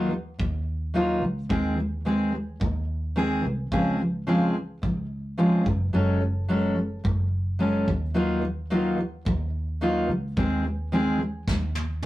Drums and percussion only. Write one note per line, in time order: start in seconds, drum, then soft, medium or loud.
0.40 kick loud
1.50 kick loud
2.61 kick loud
3.72 kick medium
4.83 kick medium
5.66 kick medium
7.05 kick loud
7.88 kick medium
9.26 kick loud
10.37 kick medium
11.48 kick loud
11.48 snare medium
11.75 high tom medium
12.02 mid tom medium